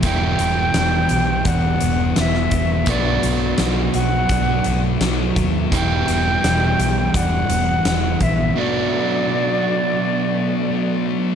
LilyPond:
<<
  \new Staff \with { instrumentName = "Flute" } { \time 4/4 \key e \minor \tempo 4 = 84 g''2 fis''4 e''4 | d''4 r8 fis''4. r4 | g''2 fis''4. e''8 | d''2.~ d''8 r8 | }
  \new Staff \with { instrumentName = "Clean electric guitar" } { \time 4/4 \key e \minor e8 b8 d'8 g'8 d'8 b8 e8 b8 | a8 a8 d'8 fis'8 d'8 a8 a8 a8 | e8 b8 d'8 g'8 d'8 b8 e8 b8 | a8 a8 d'8 fis'8 d'8 a8 a8 a8 | }
  \new Staff \with { instrumentName = "Overdriven electric guitar" } { \clef bass \time 4/4 \key e \minor <e, b, e g e' g'>1 | <b, fis b d' fis'>1 | <e, b, e g e' g'>1 | <b, fis b d' fis'>1 | }
  \new Staff \with { instrumentName = "Distorted electric guitar" } { \clef bass \time 4/4 \key e \minor <e, b, e>4 <e, b, e>4 <e, b, e>4 <e, b, e>4 | <b, fis b>4 <b, fis b>4 <b, fis b>4 <b, fis b>4 | <e, b, e>4 <e, b, e>4 <e, b, e>4 <e, b, e>4 | <b, fis b>4 <b, fis b>4 <b, fis b>4 <b, fis b>4 | }
  \new Staff \with { instrumentName = "Fingered electric bass" } { \clef bass \time 4/4 \key e \minor e,,8 e,,8 e,,8 b,,8 e,,8 e,,8 e,,8 e,,8 | b,,8 b,,8 b,,8 b,,8 b,,8 b,,8 b,,8 dis,8 | e,,8 e,,8 e,,8 b,,8 e,,8 e,,8 e,,8 ais,,8 | r1 | }
  \new DrumStaff \with { instrumentName = "Drums" } \drummode { \time 4/4 <hh bd>8 hh8 <hh sn>8 hh8 <hh bd>8 hh8 <hh sn>16 sn16 <hh bd>8 | <hh bd>8 hh8 <hh sn>8 hh8 <hh bd>8 hh8 <hh sn>8 <hh bd>8 | <hh bd>8 hh8 <hh sn>8 hh8 <hh bd>8 hh8 <hh sn>8 <hh bd>8 | r4 r4 r4 r4 | }
>>